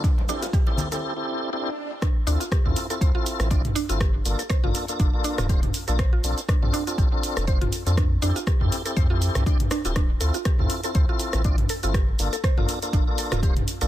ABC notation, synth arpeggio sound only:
X:1
M:4/4
L:1/16
Q:"Swing 16ths" 1/4=121
K:Dm
V:1 name="Synth arpeggio sound"
D z D F G z2 A z8 | D z D F G z2 A c F z2 D z D F | G z2 A c F z2 D z D F G z2 A | c F z2 D z D F G z2 A c F z2 |
D z D F G z2 A c F z2 D z D F | D z A F G z2 A c F z2 D z A F | G z2 A c F z2 D z A F G z2 A |]